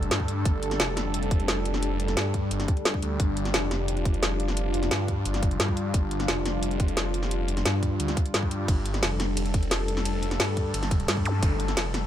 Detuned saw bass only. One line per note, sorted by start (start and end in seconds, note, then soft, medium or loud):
0.11 0.44 G2 medium
0.45 0.78 G1 loud
0.80 2.16 F1 loud
2.17 2.50 G2 loud
2.51 2.67 G1 loud
3.03 3.18 D2 medium
3.20 3.53 G1 loud
3.54 4.90 F1 loud
4.91 5.24 G2 loud
5.25 5.58 G1 loud
5.60 5.93 G2 loud
5.94 6.27 G1 loud
6.28 7.64 F1 loud
7.66 7.98 G2 loud
8.00 8.16 D2 loud
8.34 8.67 G2 medium
8.68 9.01 G1 loud
9.03 10.38 F1 loud
10.40 10.73 G2 loud
10.74 11.07 G1 loud
11.08 11.41 G2 loud
11.43 11.76 G1 loud
11.77 12.07 F1 loud